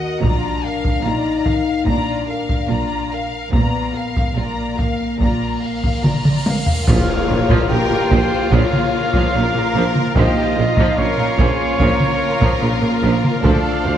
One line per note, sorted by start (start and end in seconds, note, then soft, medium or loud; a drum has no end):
0.00 0.11 D#2 medium
0.00 0.11 D#3 medium
0.00 0.21 F#4 medium
0.00 0.23 A#4 soft
0.00 0.23 D#5 soft
0.00 0.24 F#5 soft
0.22 0.93 A#1 medium
0.22 0.92 A#2 medium
0.22 1.04 D4 medium
0.22 0.62 F4 medium
0.22 0.62 D5 medium
0.22 0.61 A#5 medium
0.22 taiko medium
0.64 1.06 A#4 soft
0.64 1.05 F5 soft
0.85 taiko medium
1.04 1.75 A#1 medium
1.04 1.75 A#2 medium
1.04 1.86 D#4 medium
1.04 1.46 F4 soft
1.04 1.46 D5 medium
1.04 1.46 A#5 soft
1.46 1.88 A#4 soft
1.46 1.88 F5 soft
1.46 taiko medium
1.86 2.58 A#1 medium
1.86 2.57 A#2 medium
1.86 3.37 D4 medium
1.86 2.26 F4 medium
1.86 2.27 D5 soft
1.86 2.26 A#5 medium
1.86 taiko medium
2.29 2.71 A#4 soft
2.29 2.70 F5 soft
2.29 2.71 F5 soft
2.49 taiko medium
2.69 3.41 A#1 medium
2.69 3.41 A#2 medium
2.69 3.12 F4 soft
2.69 3.12 D5 soft
2.69 3.12 A#5 soft
3.11 3.54 A#4 soft
3.11 3.54 F5 soft
3.52 4.25 A#1 medium
3.52 4.25 A#2 medium
3.52 4.36 B3 medium
3.52 3.94 F4 soft
3.52 3.92 D5 soft
3.52 3.93 A#5 soft
3.52 taiko medium
3.52 cymbal swell soft
3.94 4.37 A#4 soft
3.94 4.37 F5 soft
4.17 taiko medium
4.36 5.08 A#1 medium
4.36 5.08 A#2 soft
4.36 6.48 A#3 medium
4.36 4.80 F4 soft
4.36 4.79 D5 soft
4.36 4.79 A#5 soft
4.79 5.21 A#4 soft
4.79 5.21 F5 soft
4.79 taiko medium
5.20 5.92 A#1 medium
5.20 5.92 A#2 medium
5.20 5.60 F4 soft
5.20 5.59 D5 soft
5.20 5.60 A#5 soft
5.20 taiko medium
5.62 6.06 A#4 soft
5.62 6.04 F5 soft
5.62 6.05 F5 soft
5.84 taiko medium
6.04 6.76 A#1 soft
6.04 6.76 A#2 medium
6.04 6.47 F4 soft
6.04 6.47 D5 soft
6.04 6.46 A#5 soft
6.04 taiko mid medium
6.25 taiko mid medium
6.46 6.89 A#4 soft
6.46 6.88 F5 soft
6.46 6.89 F5 soft
6.46 taiko high medium
6.66 taiko low medium
6.87 6.96 A#1 medium
6.87 6.96 A#2 medium
6.87 7.07 F3 medium
6.87 10.12 A#3 medium
6.87 10.12 F4 medium
6.87 7.67 F4 medium
6.87 10.12 A#4 medium
6.87 7.67 C#5 medium
6.87 7.71 F5 medium
6.87 10.12 F5 medium
6.87 taiko medium
6.87 tam-tam medium
6.87 impact medium
7.29 7.37 A#1 medium
7.29 7.38 A#2 medium
7.29 7.39 C#3 medium
7.49 7.57 A#2 medium
7.49 7.69 F3 medium
7.49 taiko medium
7.70 7.78 A#1 medium
7.70 7.78 A#2 soft
7.70 7.79 C#3 medium
7.70 8.51 G4 medium
7.70 8.12 A#4 medium
7.70 8.54 G5 loud
7.91 7.99 A#2 medium
7.91 8.00 C#3 medium
8.11 8.19 A#1 medium
8.11 8.19 A#2 medium
8.11 8.31 F3 medium
8.11 8.52 C5 medium
8.11 taiko medium
8.51 8.60 A#1 medium
8.51 8.61 A#1 medium
8.51 8.60 A#2 medium
8.51 8.72 F3 medium
8.51 10.17 F4 medium
8.51 9.32 C#5 medium
8.51 10.15 F5 loud
8.51 taiko medium
8.73 taiko mid medium
9.14 9.22 A#2 medium
9.14 9.34 F3 medium
9.14 taiko medium
9.34 9.42 A#1 medium
9.34 9.43 A#2 medium
9.34 9.44 C#3 medium
9.34 10.16 A#4 medium
9.55 9.63 A#2 soft
9.55 9.64 C#3 medium
9.74 9.83 A#1 medium
9.74 9.82 A#2 medium
9.74 9.95 F3 medium
9.95 taiko mid soft
10.15 10.23 A#1 medium
10.15 10.24 A#1 medium
10.15 10.24 A#2 medium
10.15 10.36 F3 medium
10.15 13.40 A#3 medium
10.15 10.97 D#4 medium
10.15 13.40 F4 medium
10.15 10.56 G4 medium
10.15 13.40 A#4 medium
10.15 10.99 D#5 loud
10.15 13.40 F5 medium
10.15 taiko loud
10.56 10.65 A#1 medium
10.56 10.64 A#2 medium
10.56 10.66 C#3 medium
10.56 10.98 F4 medium
10.77 10.85 A#2 medium
10.77 10.97 F3 medium
10.77 taiko medium
10.97 11.06 A#1 medium
10.97 11.06 A#1 soft
10.97 11.05 A#2 soft
10.97 11.07 C#3 medium
10.97 13.27 C#4 medium
10.97 11.39 A#4 medium
10.97 13.16 C#5 loud
11.18 11.26 A#2 medium
11.18 11.27 C#3 medium
11.38 11.46 A#1 medium
11.38 11.47 A#1 medium
11.38 11.46 A#2 medium
11.38 11.58 F3 medium
11.38 11.80 G#4 medium
11.38 taiko medium
11.79 11.88 A#1 medium
11.79 11.87 A#1 medium
11.79 11.87 A#2 medium
11.79 12.00 F3 medium
11.79 13.45 A#4 medium
11.79 taiko medium
12.00 taiko mid medium
12.40 12.48 A#2 medium
12.40 12.61 F3 medium
12.40 taiko medium
12.61 12.69 A#1 medium
12.61 12.70 A#1 medium
12.61 12.69 A#2 medium
12.61 12.70 C#3 soft
12.81 12.90 A#2 medium
12.81 12.89 C#3 medium
13.02 13.11 A#1 medium
13.02 13.11 A#2 medium
13.02 13.22 F3 medium
13.24 taiko mid medium
13.43 13.51 D2 medium
13.43 13.52 D2 medium
13.43 13.63 F3 medium
13.43 13.98 A3 medium
13.43 13.98 D4 medium
13.43 13.98 F4 medium
13.43 13.98 A4 medium
13.43 13.85 A4 medium
13.43 13.98 D5 medium
13.43 13.98 F5 medium
13.43 taiko medium
13.84 13.93 D2 medium
13.84 13.92 D2 medium
13.84 13.93 D2 soft
13.84 13.93 D3 soft
13.84 13.98 C5 medium